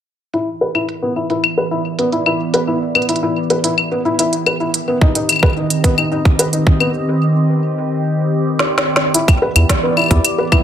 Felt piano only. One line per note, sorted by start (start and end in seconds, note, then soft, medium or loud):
0.34 0.46 E4 medium
0.61 0.70 B4 medium
0.75 0.83 E4 medium
1.02 1.11 B3 medium
1.16 1.25 E4 medium
1.30 1.43 E4 medium
1.57 1.66 B4 medium
1.71 1.80 E4 medium
1.99 2.07 B3 medium
2.12 2.21 E4 medium
2.26 2.39 E4 medium
2.54 2.62 B4 medium
2.68 2.76 E4 medium
2.95 3.03 B3 medium
3.09 3.17 E4 medium
3.23 3.35 E4 medium
3.50 3.59 B4 medium
3.64 3.72 E4 medium
3.91 4.00 B3 medium
4.05 4.14 E4 medium
4.19 4.32 E4 medium
4.46 4.55 B4 medium
4.60 4.69 E4 medium
4.88 4.96 B3 medium
5.02 5.10 D#4 medium
5.15 5.28 D#4 medium
5.43 5.51 B4 medium
5.57 5.65 D#4 medium
5.84 5.92 B3 medium
5.98 6.06 D#4 medium
6.12 6.24 D#4 medium
6.39 6.48 B4 medium
6.53 6.61 D#4 medium
6.80 6.89 B3 medium
9.14 9.27 E4 medium
9.42 9.50 B4 medium
9.56 9.64 E4 medium
9.83 9.92 B3 medium
9.97 10.05 E4 medium
10.11 10.23 E4 medium
10.38 10.47 B4 medium
10.52 10.60 E4 medium